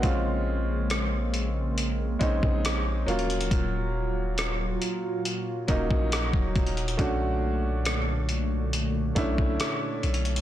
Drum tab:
HH |x-------x---x---x---x---x---xxxx|x-------x---x---x---x---x---xxxx|x-------x---x---x---x---x---xxxx|
SD |--------r---------------r-------|--------r---------------r-------|--------r---------------r-------|
BD |o-------------------o-o---------|o-------------------o-o---o-o---|o-------------------o-o---------|